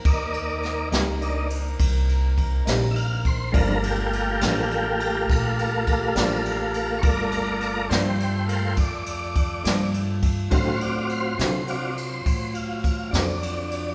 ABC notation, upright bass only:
X:1
M:12/8
L:1/8
Q:3/8=69
K:Gm
V:1 name="Upright bass" clef=bass
E,,3 ^C,,3 =C,,3 B,,,3 | G,,,3 A,,,3 B,,,3 A,,,3 | G,,,3 G,,3 F,,3 G,,3 | A,,3 C,3 A,,3 ^E,,3 |]